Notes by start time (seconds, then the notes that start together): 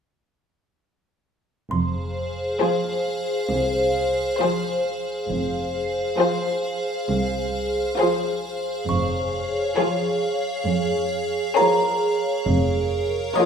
1.71 F1 F2 G#4 C5 F5 C6
2.60 F3 F4 G#4 C5
3.50 C2
4.39 F3 F4 G#4 C5
5.29 F1 F2 G#4 C5 F5
6.19 F3 F4 G#4 C5
7.08 C2
7.98 F3 F4 G#4 C5
8.87 F1 F2 G#4 C#5 F5 C#6
9.77 F3 F4 G#4 C#5
10.67 F2
11.56 F3 F4 G#4 A#4 C#5 A#5
12.46 F1 F2 A#4 C#5 F5
13.35 F3 F4 A#4 C#5 D#5 D#6